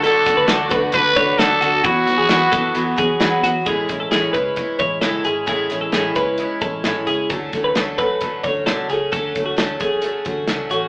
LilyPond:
<<
  \new Staff \with { instrumentName = "Clean electric guitar" } { \time 4/4 \key a \major \tempo 4 = 132 a'8. b'16 a'8 b'4 cis''8 a'8 fis'8 | fis'8. gis'16 fis'8 a'4 gis'4 fis'8 | gis'8. a'16 gis'8 b'4 cis''8 a'8 gis'8 | gis'8. a'16 gis'8 b'4 a'4 gis'8 |
a'8. b'16 a'8 b'4 cis''8 a'8 gis'8 | a'8. fis'16 a'8 gis'4 fis'4 fis'8 | }
  \new Staff \with { instrumentName = "Trumpet" } { \time 4/4 \key a \major a'4. r8 b'4 a'4 | fis'2. r4 | r1 | r1 |
r1 | r1 | }
  \new Staff \with { instrumentName = "Twelve-string acoustic guitar" } { \time 4/4 \key a \major <d a d' fis'>8 <a d' fis'>8 <d a d' fis'>8 <a d' fis'>8 <d a d' fis'>8 <a d' fis'>8 <d a d' fis'>8 <a d' fis'>8 | <e fis b fis'>8 <fis b fis'>8 <e fis b fis'>8 <fis b fis'>8 <e fis b fis'>8 <fis b fis'>8 <e fis b fis'>8 <fis b fis'>8 | <a, e gis cis' e'>8 <gis cis' e'>8 <a, e gis cis' e'>8 <gis cis' e'>8 <e gis cis' e'>8 <gis cis' e'>8 <a, e gis cis' e'>8 <gis cis' e'>8 | <a, e gis cis' e'>8 <gis cis' e'>8 <a, e gis cis' e'>8 <gis cis' e'>8 <e gis cis' e'>8 <gis cis' e'>8 <a, e gis cis' e'>8 <gis cis' e'>8 |
<d fis a cis'>8 <fis a cis'>8 <d fis a cis'>8 <fis a cis'>8 <d fis a cis'>8 <fis a cis'>8 <d fis a cis'>8 <fis a cis'>8 | <d fis a cis'>8 <fis a cis'>8 <d fis a cis'>8 <fis a cis'>8 <d fis a cis'>8 <fis a cis'>8 <d fis a cis'>8 <fis a cis'>8 | }
  \new Staff \with { instrumentName = "String section" } { \clef bass \time 4/4 \key a \major << { <fis fis'>1~ | <fis fis'>1 | r1 | r1 |
r1 | r1 | } \\ { <d a>1 | <e b>1 | r1 | r1 |
r1 | r1 | } >> }
  \new Staff \with { instrumentName = "Fingered electric bass" } { \clef bass \time 4/4 \key a \major d,8 r16 d,16 d,8 d,8 d,8 d,8 d,8 d,8 | e,8 r16 e,16 e,8 e,8 e,8 e,8 e,8 e,8 | a,,8 a,,8 a,,8 cis,8. r16 a,,8 fis,,8 gis,,8 | a,,8 a,,8 a,,8 cis,8. r16 a,,8 gis,,8 cis,8 |
d,8 d,8 d,8 fis,8. r16 d,8 b,,8 cis,8 | d,8 d,8 d,8 fis,8. r16 d,8 cis,8 a,,8 | }
  \new DrumStaff \with { instrumentName = "Drums" } \drummode { \time 4/4 <hho hhp>8 <hho hhp bd sn>8 <hho hhp sn>8 <hho hhp bd>8 <hho hhp bd>8 <hho hhp bd>8 <hho hhp sn>8 <hho hhp>8 | <hho hhp bd>8 <hho hhp sn>8 <hho hhp sn>8 <hho hhp bd>8 <hho hhp>8 <hho hhp bd>8 <hho hhp sn>8 <hho hhp>8 | <hh bd>8 <hh bd sn>8 <hh sn>8 <hh bd>8 <hh bd>8 <hh bd>8 <hh sn>8 hh8 | <hh bd>8 <hh sn>8 <hh sn>8 <hh bd>8 hh8 <hh bd>8 <hh sn>8 hh8 |
<hh bd>8 <hh bd sn>8 <hh sn>8 <hh bd>8 <hh bd>8 <hh bd>8 <hh sn>8 hh8 | <hh bd>8 <hh bd>8 <hh sn>8 <hh bd>8 hh8 <hh bd>8 <hh sn>8 hh8 | }
>>